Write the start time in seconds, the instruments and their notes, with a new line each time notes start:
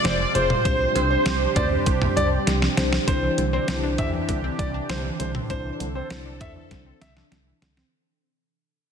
Already playing: analog synth pad C3 F3 G#3 F4, analog polysynth D5
0.04 fm bass F1, grand piano C5, snare, closed hi-hat
0.35 fm bass F1, tine electric piano F4 G#4 C5, grand piano C5, analog polysynth C5, closed hi-hat
0.50 mid tom
0.65 fm bass C2, analog synth pad G3 D4 G4, tine electric piano D4 G4 C5, grand piano C5, kick, closed hi-hat
0.95 fm bass C2, closed hi-hat, cowbell
1.10 grand piano C5
1.26 fm bass C2, snare, closed hi-hat
1.56 fm bass D2, grand piano D5, kick, closed hi-hat, mid tom, cowbell
1.86 fm bass C2, kick, closed hi-hat
2.02 mid tom
2.17 fm bass C2, grand piano D5, closed hi-hat
2.47 fm bass C2, snare, closed hi-hat
2.62 snare
2.77 fm bass C2, tine electric piano D4 G4 C5, snare, closed hi-hat
2.93 snare
3.07 fm bass C2, analog synth pad C3 E3 D4 G4, synth pluck D3, tine electric piano D4 E4 C5, grand piano C5, kick, closed hi-hat
3.23 synth pluck E3
3.38 fm bass C2, synth pluck D3, closed hi-hat
3.53 synth pluck C4, grand piano C5
3.68 fm bass C2, synth pluck D3, tine electric piano D4 E4 C5, snare, closed hi-hat
3.83 synth pluck D4
3.98 fm bass E2, synth pluck D3, grand piano E5, kick, closed hi-hat, mid tom
4.14 synth pluck E3
4.29 fm bass C2, synth pluck D3, kick, closed hi-hat
4.44 synth pluck C4
4.59 fm bass C2, synth pluck D3, grand piano D5, kick, closed hi-hat
4.74 synth pluck D4
4.89 fm bass C2, synth pluck D3, grand piano C5, snare, closed hi-hat
5.04 synth pluck E3
5.19 fm bass C2, synth pluck D3, grand piano C5, closed hi-hat
5.35 synth pluck C4, mid tom
5.50 fm bass C2, synth pluck D3, tine electric piano D4 E4 C5, analog synth pad A4, grand piano C5, kick, closed hi-hat
5.65 synth pluck E3
5.80 fm bass C2, synth pluck D3, closed hi-hat
5.95 synth pluck C4, grand piano C5
6.10 fm bass C2, synth pluck D3, tine electric piano D4 E4 C5, snare, closed hi-hat
6.26 synth pluck D4
6.41 fm bass E2, synth pluck D3, grand piano E5, kick, closed hi-hat, mid tom
6.56 synth pluck E3
6.71 fm bass C2, synth pluck D3, kick, snare, closed hi-hat
6.86 synth pluck C4
7.01 fm bass C2, synth pluck D3, grand piano E5, snare, closed hi-hat
7.17 synth pluck D4, snare
7.32 fm bass C2, synth pluck D3, snare, closed hi-hat
7.47 synth pluck E3
7.62 fm bass C2, synth pluck D3, snare, closed hi-hat
7.77 synth pluck C4, snare